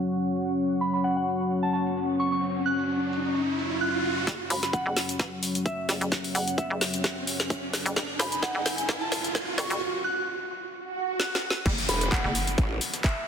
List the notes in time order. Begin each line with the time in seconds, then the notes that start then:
Already playing: F#3 C#4 F#4 C#5 F#5 C#6, downlifter
0.02 shaker
0.12 shaker
0.35 shaker
0.48 shaker
0.58 riser, shaker
0.81 B5, shaker
0.94 B5, shaker
1.04 F#5, shaker
1.17 F#5
1.28 shaker
1.40 shaker
1.51 shaker
1.63 A5
1.73 A5, shaker
1.86 shaker
1.97 shaker
2.20 C#6, shaker
2.32 C#6, shaker
2.43 shaker
2.66 F#6, shaker
2.79 shaker
2.89 shaker
3.12 shaker
3.25 shaker
3.36 shaker
3.59 shaker
3.71 shaker
3.81 F#6, shaker
4.05 shaker
4.17 shaker
4.27 F#1 F#3 C#4 C#5 F#5, kick, snare, closed hi-hat, riser, shaker
4.50 E1 B5, open hi-hat, shaker
4.63 B5, snare, closed hi-hat, shaker
4.73 F#5, kick, closed hi-hat, shaker
4.86 F#1 F#5
4.97 snare, open hi-hat, shaker
5.09 closed hi-hat, shaker
5.19 A1, kick, snare, closed hi-hat, shaker
5.43 open hi-hat, shaker
5.55 closed hi-hat, shaker
5.66 E5, kick, closed hi-hat, shaker
5.89 F#1, snare, open hi-hat, shaker
6.01 F#1, closed hi-hat, shaker
6.12 kick, snare, closed hi-hat, shaker
6.24 open hi-hat
6.35 F#1 F#5, open hi-hat, shaker
6.48 closed hi-hat, shaker
6.58 E5, kick, closed hi-hat, shaker
6.70 F#1
6.81 snare, open hi-hat, shaker
6.94 closed hi-hat, shaker
7.04 kick, snare, closed hi-hat, shaker
7.27 open hi-hat, shaker
7.40 snare, closed hi-hat, shaker
7.50 kick, closed hi-hat, shaker
7.73 snare, open hi-hat, shaker
7.86 F#1, closed hi-hat, shaker
7.96 F#1 G#5, kick, snare, closed hi-hat, shaker
8.19 E1 B5, snare, open hi-hat, shaker
8.32 B5, closed hi-hat, shaker
8.43 F#5, kick, snare, closed hi-hat, shaker
8.55 F#1 F#5
8.66 snare, open hi-hat, shaker
8.78 closed hi-hat, shaker
8.89 A1, kick, snare, closed hi-hat, shaker
9.01 A5
9.12 snare, open hi-hat, shaker
9.24 closed hi-hat, shaker
9.35 kick, snare, closed hi-hat, shaker
9.58 F#1 C#6, snare, open hi-hat, shaker
9.70 F#1 C#6, closed hi-hat, shaker
10.04 F#6
10.73 swell
11.20 F#6, snare
11.35 snare
11.50 snare
11.66 F#1 F#3, kick, closed hi-hat, crash, downlifter, shaker
11.78 open hi-hat
11.89 E1 B5, closed hi-hat, open hi-hat, shaker
12.01 B5, closed hi-hat, shaker
12.12 F#5, kick, snare, clap, closed hi-hat, shaker
12.24 F#1 F#5, snare
12.35 closed hi-hat, open hi-hat, shaker
12.47 closed hi-hat, shaker
12.58 A1, kick, closed hi-hat, shaker
12.81 closed hi-hat, open hi-hat, shaker
12.94 snare, closed hi-hat, shaker
13.04 E5, kick, snare, clap, closed hi-hat, shaker